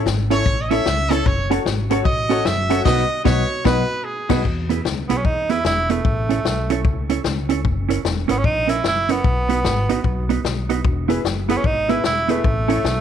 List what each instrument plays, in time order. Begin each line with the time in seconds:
0.06 upright bass G#1, muted clean electric guitar stroke, snare
0.30 clean electric guitar C#4 E4 A4 C#5, upright piano E4 A4 C#5, trumpet C#5, closed hi-hat
0.46 upright bass A1, kick
0.61 trumpet D#5
0.69 clean electric guitar C#4 E4 A4 C#5, upright piano E4 A4 C#5, trumpet E5, closed hi-hat
0.86 upright bass C#2, snare
1.10 clean electric guitar C#4 E4 A4 C#5, upright piano E4 A4 C#5, trumpet A4, closed hi-hat
1.26 upright bass F#1, trumpet C#5, kick
1.50 clean electric guitar C#4 F#4 A4 C#5, upright piano F#4 A4 C#5, closed hi-hat
1.65 upright bass G#1, muted clean electric guitar stroke, snare
1.90 clean electric guitar C#4 F#4 A4 C#5, upright piano F#4 A4 C#5, closed hi-hat
2.05 upright bass A1, trumpet D#5, kick
2.29 clean electric guitar C#4 F#4 A4 C#5, upright piano F#4 A4 C#5, closed hi-hat
2.45 upright bass F#1, trumpet E5, snare
2.70 clean electric guitar C#4 F#4 A4 C#5, upright piano F#4 A4 C#5, closed hi-hat
2.85 upright bass B1, clean electric guitar B3 D#4 F#4 B4, upright piano F#4 B4 D#5, trumpet D#5, kick, snare, crash
3.24 upright bass B1, clean electric guitar B3 D#4 F#4 B4, upright piano F#4 B4 D#5, trumpet C#5, kick, snare
3.65 upright bass B1, clean electric guitar B3 D#4 F#4 B4, upright piano F#4 B4 D#5, trumpet B4, kick, snare
4.04 trumpet G#4
4.29 upright bass B1, clean electric guitar B3 D#4 F#4 B4, upright piano F#4 B4 D#5, kick, snare, crash
4.45 upright bass E2, kick
4.69 clean electric guitar B3 E4 G#4 B4, closed hi-hat
4.85 upright bass C#2, muted clean electric guitar stroke, snare
5.09 upright bass B1, tenor saxophone B3, clean electric guitar B3 E4 G#4 B4, closed hi-hat
5.17 tenor saxophone C#4
5.25 upright bass E2, tenor saxophone D#4, kick
5.49 clean electric guitar B3 E4 G#4 B4, tenor saxophone E4, closed hi-hat
5.65 upright bass E1, tenor saxophone E4, snare
5.89 tenor saxophone A3, clean electric guitar B3 E4 G#4 B4, closed hi-hat
6.05 upright bass A1, kick
6.29 clean electric guitar C#4 E4 A4 C#5, closed hi-hat
6.45 upright bass B1, muted clean electric guitar stroke, snare
6.70 clean electric guitar C#4 E4 A4 C#5, closed hi-hat
6.84 upright bass C#2, kick
7.10 clean electric guitar C#4 E4 A4 C#5, closed hi-hat
7.24 upright bass C#2, snare
7.49 clean electric guitar C#4 E4 A4 C#5, closed hi-hat
7.65 upright bass F#1, kick
7.89 clean electric guitar C#4 E4 A#4 C#5, closed hi-hat
8.04 upright bass E1, muted clean electric guitar stroke, snare
8.28 upright bass G#1, tenor saxophone B3, clean electric guitar C#4 E4 A#4 C#5, closed hi-hat
8.38 tenor saxophone C#4
8.44 upright bass A#1, tenor saxophone D#4, kick
8.67 clean electric guitar C#4 E4 A#4 C#5, tenor saxophone E4, closed hi-hat
8.84 upright bass F#1, tenor saxophone E4, snare
9.09 tenor saxophone B3, clean electric guitar C#4 E4 A#4 C#5, closed hi-hat
9.24 upright bass B1, kick
9.49 clean electric guitar B3 D#4 F#4 B4, closed hi-hat
9.64 upright bass G#1, muted clean electric guitar stroke, snare
9.89 upright bass A1, clean electric guitar B3 D#4 F#4 B4, closed hi-hat
10.04 upright bass B1, kick
10.29 clean electric guitar B3 D#4 F#4 B4, closed hi-hat
10.44 upright bass B1, snare
10.69 clean electric guitar B3 D#4 F#4 B4, closed hi-hat
10.84 upright bass E1, kick
11.08 clean electric guitar B3 E4 G#4 B4, upright piano E4 G#4 B4, closed hi-hat
11.24 upright bass F#1, muted clean electric guitar stroke, snare
11.48 clean electric guitar B3 E4 G#4 B4, tenor saxophone B3, upright piano E4 G#4 B4, closed hi-hat
11.57 tenor saxophone C#4
11.64 upright bass G#1, tenor saxophone D#4, kick
11.88 clean electric guitar B3 E4 G#4 B4, upright piano E4 G#4 B4, tenor saxophone E4, closed hi-hat
12.04 upright bass E1, tenor saxophone E4, snare
12.28 tenor saxophone A3, clean electric guitar B3 E4 G#4 B4, upright piano E4 G#4 B4, closed hi-hat
12.44 upright bass A1, kick
12.68 clean electric guitar C#4 E4 A4 C#5, upright piano E4 A4 C#5, closed hi-hat
12.84 upright bass B1, muted clean electric guitar stroke, snare